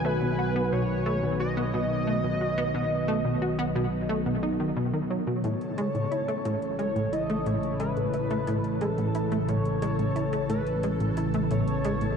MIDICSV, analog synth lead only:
0, 0, Header, 1, 2, 480
1, 0, Start_track
1, 0, Tempo, 674157
1, 33, Time_signature, 4, 2, 24, 8
1, 8664, End_track
2, 0, Start_track
2, 0, Title_t, "Analog synth lead"
2, 0, Program_c, 0, 81
2, 35, Note_on_c, 0, 71, 108
2, 515, Note_on_c, 0, 73, 97
2, 525, Note_off_c, 0, 71, 0
2, 990, Note_off_c, 0, 73, 0
2, 994, Note_on_c, 0, 75, 111
2, 3366, Note_off_c, 0, 75, 0
2, 3876, Note_on_c, 0, 73, 119
2, 4807, Note_off_c, 0, 73, 0
2, 4836, Note_on_c, 0, 73, 112
2, 5074, Note_on_c, 0, 75, 110
2, 5085, Note_off_c, 0, 73, 0
2, 5312, Note_on_c, 0, 73, 110
2, 5322, Note_off_c, 0, 75, 0
2, 5548, Note_off_c, 0, 73, 0
2, 5552, Note_on_c, 0, 71, 114
2, 6273, Note_on_c, 0, 69, 97
2, 6284, Note_off_c, 0, 71, 0
2, 6753, Note_on_c, 0, 73, 112
2, 6764, Note_off_c, 0, 69, 0
2, 7470, Note_off_c, 0, 73, 0
2, 7474, Note_on_c, 0, 71, 96
2, 7925, Note_off_c, 0, 71, 0
2, 8195, Note_on_c, 0, 73, 103
2, 8664, Note_off_c, 0, 73, 0
2, 8664, End_track
0, 0, End_of_file